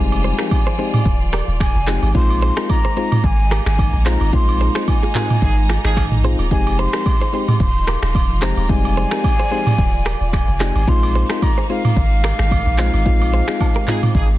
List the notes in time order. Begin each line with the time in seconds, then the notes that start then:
Already playing: F1 F3 G3 G#3 C4 D#4 F4 D5 G#5
0.12 high agogo, shaker
0.24 G#4 C5, shaker
0.38 G#3 C4 D#4 G4 A#4, finger snap, cross-stick, shaker
0.51 G#5, kick, high agogo, shaker
0.67 G#4 C5, shaker
0.78 G#3 C4 D#4 G4 G#4 C5, shaker
0.94 mid tom, high agogo, shaker
1.05 D#1, kick, shaker
1.21 shaker
1.33 G4 A#4, finger snap, cross-stick, high agogo
1.48 D#1, shaker
1.60 G#5, finger snap, kick, cross-stick, high agogo, shaker
1.75 F1, shaker
1.87 G#3 C4 D#4 F4 G4 G#4, finger snap, cross-stick, clap, shaker
2.02 G#1, high agogo, shaker
2.14 A#1 G#3 A#3 C4 D#4 F4 C6, kick, shaker
2.30 high agogo, shaker
2.42 G#4 C5, shaker
2.57 G#3 C4 D#4 F4 G4 A#4, finger snap, cross-stick, shaker
2.70 A#5, kick, high agogo, shaker
2.85 G#4 C5, shaker
2.96 G#3 C4 D#4 F4 G#4 C5, shaker
3.12 mid tom, high agogo, shaker
3.24 G#1 G#5, kick, shaker
3.39 shaker
3.51 G4 A#4, finger snap, cross-stick, high agogo
3.66 G#1 G#5, finger snap, cross-stick, shaker
3.78 kick, high agogo, shaker
3.93 A#1, shaker
4.06 G#3 C4 D#4 F4 G#4 C5 A#5, finger snap, cross-stick, clap, shaker
4.21 G#1, high agogo, shaker
4.33 A#1 G#3 C4 D#4 F4 C6, kick, shaker
4.48 high agogo, shaker
4.60 G#4 C5, shaker
4.75 G#3 C4 D#4 F4 G#4 C5, finger snap, cross-stick, shaker
4.88 G#5, kick, high agogo, shaker
5.03 F4 G#4, shaker
5.15 F3 G#3 C4 D#4 F4 G4 G#4 A#4, clap, mid tom, shaker
5.30 mid tom, high agogo, shaker
5.42 G#1 F3 D#4 G#4, kick, shaker
5.57 shaker
5.69 F4 G#4, finger snap, cross-stick, open hi-hat, high agogo, shaker
5.84 G#1 F3 D#4 G#4, finger snap, cross-stick, shaker
5.96 finger snap, kick, cross-stick, high agogo, shaker
6.11 A#1, mid tom, shaker
6.24 G#3 C4 D#4 F4 G#4 C5
6.39 D#1, high agogo, shaker
6.51 F1 F3 G#3 C4 D#4 F4 G4 G#5, kick, shaker
6.66 high agogo, shaker
6.78 G#4 C5 C6, shaker
6.93 G#3 C4 D#4 G4 A#4, finger snap, cross-stick, shaker
7.06 kick, high agogo, shaker
7.21 G#4 C5, shaker
7.33 G#3 C4 D#4 G4 G#4 C5, shaker
7.48 mid tom, high agogo, shaker
7.60 D#1 C6, kick, shaker
7.75 shaker
7.87 G4 A#4, finger snap, cross-stick, high agogo
8.02 D#1 C6, finger snap, cross-stick, shaker
8.14 kick, high agogo, shaker
8.29 F1, shaker
8.42 G#3 C4 D#4 G4 G#4 C5 A#5, finger snap, cross-stick, clap, shaker
8.57 D#1, high agogo, shaker
8.69 F1 G3 G#3 C4 D#4 D5 G#5, kick, shaker
8.84 high agogo, shaker
8.96 G#4 C5, shaker
9.11 G#3 C4 D#4 G4 A#4, finger snap, cross-stick, shaker
9.24 kick, high agogo, shaker
9.39 G#4 C5, shaker
9.51 G#3 C4 D#4 G4 G#4 C5, shaker
9.66 mid tom, high agogo, shaker
9.78 D#1, kick, shaker
9.94 shaker
10.06 G4 A#4, finger snap, cross-stick, high agogo
10.21 D#1, shaker
10.33 G#5, finger snap, kick, cross-stick, high agogo, shaker
10.48 F1, shaker
10.60 G#3 C4 D#4 F4 G4 G#4, finger snap, cross-stick, clap, shaker
10.75 G#1, high agogo, shaker
10.87 A#1 G#3 A#3 C4 D#4 F4 C6, kick, shaker
11.03 high agogo, shaker
11.15 G#4 C5, shaker
11.29 G#3 C4 D#4 F4 G4 A#4, finger snap, cross-stick, shaker
11.42 A#5, kick, high agogo, shaker
11.58 G#4 C5, shaker
11.69 G#3 C4 D#4 F4 G#4 C5 F5, shaker
11.85 mid tom, high agogo, shaker
11.97 G#1, kick, shaker
12.12 shaker
12.24 G4 A#4, finger snap, cross-stick, high agogo
12.39 G#1, finger snap, cross-stick, shaker
12.51 kick, high agogo, shaker
12.66 A#1, shaker
12.78 G#3 C4 D#4 F4 G#4 C5, finger snap, cross-stick, clap, shaker
12.93 G#1, high agogo, shaker
13.05 A#1 G#3 C4 D#4 F4, kick, shaker
13.21 high agogo, shaker
13.33 G#4 C5, shaker
13.48 G#3 C4 D#4 F4 G#4, finger snap, cross-stick, shaker
13.60 kick, high agogo, low woodblock, shaker
13.76 G4 A#4, shaker
13.87 F3 G#3 C4 D#4 F4 G#4, clap, mid tom, shaker
14.03 mid tom, high agogo, shaker
14.15 G#1 F3 D#4 G#4, kick, shaker
14.30 shaker